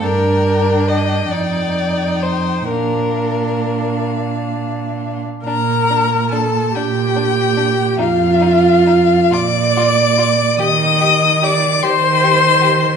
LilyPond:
<<
  \new Staff \with { instrumentName = "Violin" } { \time 6/8 \key bes \major \tempo 4. = 46 g''2. | f''2~ f''8. r16 | bes''4 a''8 g''4. | f''4. d'''4. |
ees'''4 d'''8 c'''4. | }
  \new Staff \with { instrumentName = "Viola" } { \time 6/8 \key bes \major d'4. ees'4. | d'2~ d'8. r16 | bes'4 a'8 g'4. | f'4. d''4. |
ees''4 d''8 c''4. | }
  \new Staff \with { instrumentName = "Violin" } { \time 6/8 \key bes \major bes'4 ees''8 d''4 c''8 | bes'4. r4. | d'8 d'8 d'8 d'8 d'8 d'8 | ees'8 ees'8 ees'8 f'8 f'8 f'8 |
g'8 g'8 g'8 g'8 g'8 g'8 | }
  \new Staff \with { instrumentName = "Cello" } { \clef bass \time 6/8 \key bes \major g,4. f,4. | bes,2~ bes,8. r16 | bes,4. bes,4. | f,4. bes,4. |
ees4. ees4. | }
>>